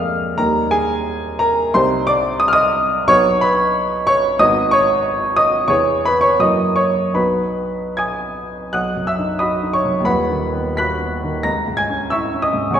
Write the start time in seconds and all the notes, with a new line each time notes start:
Already playing: F2 G#3 A#3 D4 D5 D#5 F5 D6 D#6 F6
0.37 D#2 G3 A#3 D#4 A#4 A#5
0.71 G#4 G#5
1.39 A#4 A#5
1.74 C2 G3 D#4 C5 C6
2.07 D5 D6
2.40 D#6
2.48 F6
2.53 D#5 D#6
3.07 B1 B3 D#4 F#4 C#5 C#6
3.41 B4 B5
4.07 C#5 C#6
4.39 G#1 B3 D#4 F#4 D#5 D#6
4.71 C#5 C#6
5.37 D#5 D#6
5.68 E2 B3 E4 G#4 C#5 C#6
6.05 B4 B5
6.21 C#5 C#6
6.39 F#2 A#3 E4 F#4 D#5 D#6
6.76 C#5 C#6
7.14 B1 B3 D#4 F#4 B4 B5
7.97 G#5 D#6 G#6
8.73 B1 F#5 D#6 F#6
8.96 F#2
9.07 E5 E6
9.19 D#4
9.39 F#4 D#5 B5 D#6
9.63 D#4
9.73 C#5 C#6
9.85 F#2
10.00 D#2
10.04 D#1 B4 F#5 B5
10.30 D#3
10.55 B3
10.77 F#4 B5 F#6 B6
10.99 B3
11.24 D#3
11.43 C#2 A#5 A#6
11.68 G#2
11.77 G#5 G#6
11.89 C#4
12.10 E4 E5 C#6 E6
12.34 C#4
12.42 D#5 D#6
12.53 G#2
12.71 E1 E2 C#5 C#6
12.75 G#5